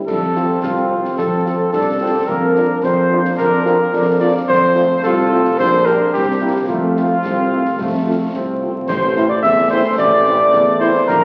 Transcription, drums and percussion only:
0.08 concert bass drum, crash
0.36 snare
0.63 concert bass drum, snare
1.05 snare
1.19 concert bass drum, snare
1.46 snare
1.73 concert bass drum, snare
2.28 concert bass drum
2.56 snare
2.84 concert bass drum, snare
3.25 snare
3.38 concert bass drum, snare
3.66 snare
3.93 concert bass drum, snare
4.49 concert bass drum, crash
4.76 snare
5.04 concert bass drum, snare
5.45 snare
5.59 concert bass drum, snare
5.87 snare
6.14 concert bass drum, snare
6.69 concert bass drum
6.97 snare
7.24 concert bass drum, snare
7.65 snare
7.79 concert bass drum, snare
8.34 concert bass drum, snare
8.89 concert bass drum, snare, crash
9.17 snare
9.44 concert bass drum, snare
9.99 concert bass drum, snare
10.26 snare
10.54 concert bass drum, snare
10.81 snare
10.95 snare
11.09 concert bass drum, snare

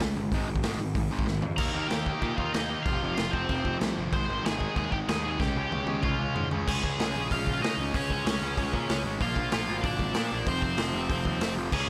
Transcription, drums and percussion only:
0.01 snare
0.32 kick, open hi-hat
0.56 kick
0.63 snare, open hi-hat
0.95 kick, open hi-hat
1.19 kick
1.27 snare
1.42 floor tom
1.58 kick, crash
1.90 snare, crash
2.06 kick
2.22 kick, crash
2.38 kick
2.54 snare, crash
2.86 kick, crash
3.17 snare, crash
3.33 kick
3.49 kick, crash
3.65 kick
3.81 snare, crash
4.13 kick, crash
4.46 snare, crash
4.60 kick
4.76 kick, crash
4.92 kick
5.09 snare, crash
5.40 kick, snare
5.72 high tom
5.87 high tom
6.03 kick, mid tom
6.36 floor tom
6.51 floor tom
6.68 kick, crash
6.84 kick
7.00 snare, open hi-hat
7.31 kick, open hi-hat
7.47 kick
7.64 snare, open hi-hat
7.94 kick, open hi-hat
8.10 kick
8.26 snare, open hi-hat
8.57 kick, open hi-hat
8.74 kick
8.89 snare, open hi-hat
9.20 kick, open hi-hat
9.36 kick
9.52 snare, open hi-hat
9.84 kick, open hi-hat
9.99 kick
10.14 snare, open hi-hat
10.46 kick, open hi-hat
10.62 kick
10.78 snare, open hi-hat
11.10 kick, open hi-hat
11.25 kick
11.41 snare, open hi-hat
11.72 kick, crash

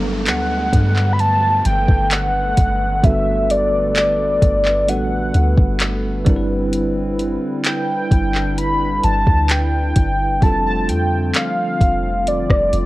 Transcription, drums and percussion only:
0.26 clap, closed hi-hat
0.73 kick, closed hi-hat
0.96 clap
1.19 closed hi-hat
1.65 closed hi-hat
1.88 kick
2.11 clap, closed hi-hat
2.57 kick, closed hi-hat
3.04 kick, closed hi-hat
3.50 closed hi-hat
3.96 clap, closed hi-hat
4.42 kick, closed hi-hat
4.65 clap
4.88 closed hi-hat
5.34 closed hi-hat
5.58 kick
5.80 clap, closed hi-hat
6.26 kick, closed hi-hat
6.73 closed hi-hat
7.19 closed hi-hat
7.65 clap, closed hi-hat
8.11 kick, closed hi-hat
8.35 clap
8.58 closed hi-hat
9.04 closed hi-hat
9.27 kick
9.49 clap, closed hi-hat
9.96 kick, closed hi-hat
10.42 kick, closed hi-hat
10.89 closed hi-hat
11.34 clap, closed hi-hat
11.81 kick, closed hi-hat
12.27 closed hi-hat
12.50 kick, cross-stick
12.73 closed hi-hat

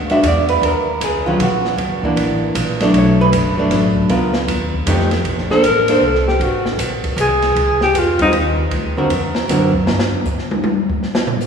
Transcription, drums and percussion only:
0.10 ride
0.23 hi-hat pedal, ride
0.49 ride
0.63 ride
1.01 hi-hat pedal, ride
1.40 ride
1.65 snare
1.78 ride
2.03 kick
2.17 ride
2.55 hi-hat pedal, ride
2.80 snare, ride
2.94 ride
3.33 hi-hat pedal, ride
3.71 snare, ride
3.96 kick
4.09 ride
4.34 snare
4.48 ride
4.73 kick
4.87 hi-hat pedal, ride
5.00 snare
5.11 snare, ride
5.25 ride
5.38 snare
5.51 snare
5.64 hi-hat pedal, ride
5.88 ride
6.15 snare
6.28 snare
6.41 ride
6.66 snare
6.79 hi-hat pedal, ride
7.04 kick, ride
7.18 hi-hat pedal, ride
7.42 snare, ride
7.56 ride
7.81 snare
7.95 hi-hat pedal, ride
8.19 kick, ride
8.33 ride
8.71 ride
9.10 ride
9.35 snare
9.49 snare, hi-hat pedal, ride
9.73 kick
9.87 snare
9.99 snare
10.25 kick, hi-hat pedal
10.38 snare
10.51 high tom
10.64 high tom
10.90 kick
11.03 snare
11.15 snare
11.27 floor tom
11.40 hi-hat pedal

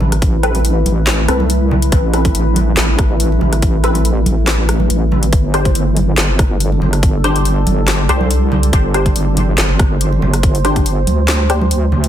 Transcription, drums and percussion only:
0.00 high conga, low conga
0.12 cross-stick, closed hi-hat
0.22 kick, closed hi-hat
0.43 cross-stick, closed hi-hat
0.55 closed hi-hat, muted conga
0.65 closed hi-hat
0.86 closed hi-hat, muted conga, high conga
1.07 snare, clap, closed hi-hat
1.28 cross-stick, closed hi-hat
1.40 high conga
1.50 closed hi-hat
1.71 high conga, low conga
1.82 closed hi-hat
1.92 kick, closed hi-hat
2.14 cross-stick, closed hi-hat
2.25 kick, closed hi-hat, muted conga
2.35 closed hi-hat
2.56 closed hi-hat, high conga
2.77 snare, clap, closed hi-hat
2.99 kick, cross-stick, closed hi-hat
3.20 closed hi-hat
3.32 muted conga
3.41 high conga, low conga
3.53 cross-stick, closed hi-hat
3.62 kick, closed hi-hat
3.84 cross-stick, closed hi-hat
3.95 closed hi-hat, muted conga
4.05 closed hi-hat
4.26 closed hi-hat, muted conga, high conga
4.48 snare, clap, closed hi-hat
4.69 cross-stick, closed hi-hat
4.80 high conga
4.90 closed hi-hat
5.12 high conga, low conga
5.23 closed hi-hat
5.33 kick, closed hi-hat
5.54 cross-stick, closed hi-hat
5.65 kick, closed hi-hat, muted conga
5.75 closed hi-hat
5.97 closed hi-hat, high conga
6.18 snare, clap, closed hi-hat
6.39 kick, cross-stick, closed hi-hat
6.60 closed hi-hat
6.72 muted conga
6.82 high conga, low conga
6.93 cross-stick, closed hi-hat
7.03 kick, closed hi-hat
7.24 cross-stick, closed hi-hat
7.36 closed hi-hat, muted conga
7.45 closed hi-hat
7.66 closed hi-hat, muted conga, high conga
7.88 snare, clap, closed hi-hat
8.09 cross-stick, closed hi-hat
8.21 high conga
8.31 closed hi-hat
8.52 high conga, low conga
8.63 closed hi-hat
8.73 kick, closed hi-hat
8.94 cross-stick, closed hi-hat
9.06 kick, closed hi-hat, muted conga
9.16 closed hi-hat
9.37 closed hi-hat, high conga
9.58 snare, clap, closed hi-hat
9.79 kick, cross-stick, closed hi-hat
10.01 closed hi-hat
10.12 muted conga
10.22 high conga, low conga
10.34 cross-stick, closed hi-hat
10.43 kick, closed hi-hat
10.55 closed hi-hat
10.65 cross-stick, closed hi-hat
10.76 kick, closed hi-hat, muted conga
10.86 closed hi-hat
11.07 closed hi-hat, muted conga, high conga
11.28 snare, clap, closed hi-hat
11.50 cross-stick, closed hi-hat
11.61 high conga
11.71 closed hi-hat
11.92 high conga, low conga
12.04 closed hi-hat

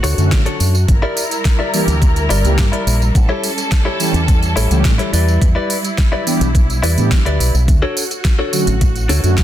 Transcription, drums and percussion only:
0.04 open hi-hat, tambourine
0.18 closed hi-hat, tambourine
0.32 kick, snare, closed hi-hat, tambourine
0.46 closed hi-hat
0.60 open hi-hat, tambourine
0.75 tambourine
0.88 kick, closed hi-hat, tambourine
1.17 open hi-hat, tambourine
1.31 closed hi-hat, tambourine
1.45 kick, snare, closed hi-hat, tambourine
1.74 open hi-hat, tambourine
1.88 closed hi-hat, tambourine
2.02 kick, closed hi-hat, tambourine
2.16 closed hi-hat, tambourine
2.30 open hi-hat, tambourine
2.45 closed hi-hat, tambourine
2.58 kick, snare, closed hi-hat, tambourine
2.73 closed hi-hat
2.87 open hi-hat, tambourine
3.02 tambourine
3.15 kick, closed hi-hat, tambourine
3.44 open hi-hat, tambourine
3.58 closed hi-hat, tambourine
3.72 kick, snare, closed hi-hat, tambourine
4.00 open hi-hat, tambourine
4.14 closed hi-hat, tambourine
4.28 kick, closed hi-hat, tambourine
4.43 closed hi-hat, tambourine
4.57 open hi-hat, tambourine
4.71 closed hi-hat, tambourine
4.85 kick, snare, closed hi-hat, tambourine
4.99 closed hi-hat
5.14 open hi-hat, tambourine
5.28 tambourine
5.42 kick, closed hi-hat, tambourine
5.70 open hi-hat, tambourine
5.84 closed hi-hat, tambourine
5.98 kick, snare, closed hi-hat, tambourine
6.27 open hi-hat, tambourine
6.41 closed hi-hat, tambourine
6.55 kick, closed hi-hat, tambourine
6.70 closed hi-hat, tambourine
6.84 open hi-hat, tambourine
6.98 closed hi-hat, tambourine
7.11 kick, snare, closed hi-hat, tambourine
7.26 closed hi-hat
7.40 open hi-hat, tambourine
7.55 tambourine
7.68 kick, closed hi-hat, tambourine
7.97 open hi-hat, tambourine
8.11 closed hi-hat, tambourine
8.25 kick, snare, closed hi-hat, tambourine
8.53 open hi-hat, tambourine
8.67 closed hi-hat, tambourine
8.81 kick, closed hi-hat, tambourine
8.96 closed hi-hat, tambourine
9.09 open hi-hat, tambourine
9.24 closed hi-hat, tambourine
9.38 kick, snare, closed hi-hat, tambourine

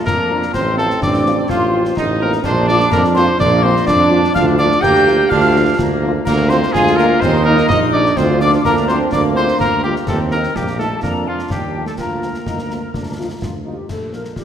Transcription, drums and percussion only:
0.07 concert bass drum, snare
0.42 snare
0.54 concert bass drum, snare, crash
0.78 snare
0.90 snare
1.02 concert bass drum, snare
1.14 snare
1.26 snare
1.49 concert bass drum, snare
1.85 snare
1.97 concert bass drum, snare
2.32 snare
2.44 concert bass drum, snare, crash
2.69 snare
2.80 snare
2.92 concert bass drum, snare
3.04 snare
3.16 snare
3.40 concert bass drum, snare
3.76 snare
3.88 concert bass drum, snare
4.24 snare
4.36 concert bass drum, snare, crash
4.59 snare
4.71 snare
4.83 concert bass drum, snare
4.95 snare
5.07 snare
5.32 concert bass drum, snare
5.79 concert bass drum, snare
6.27 concert bass drum, snare, crash
6.51 snare
6.63 snare
6.75 concert bass drum, snare
6.87 snare
6.99 snare
7.22 concert bass drum, snare
7.58 snare
7.70 concert bass drum, snare
8.06 snare
8.17 concert bass drum, snare, crash
8.41 snare
8.53 snare
8.65 concert bass drum, snare
8.77 snare
8.88 snare
9.12 concert bass drum, snare
9.48 snare
9.60 concert bass drum, snare
9.96 snare
10.07 concert bass drum, snare, crash
10.31 snare
10.43 snare
10.56 concert bass drum, snare
10.67 snare
10.80 snare
11.03 concert bass drum, snare
11.39 snare
11.50 concert bass drum, snare
11.86 snare
11.98 concert bass drum, snare, crash
12.22 snare
12.34 snare
12.46 concert bass drum, snare
12.58 snare
12.70 snare
12.94 concert bass drum, snare
13.42 concert bass drum, snare
13.89 concert bass drum, snare, crash
14.13 snare
14.25 snare
14.36 concert bass drum, snare

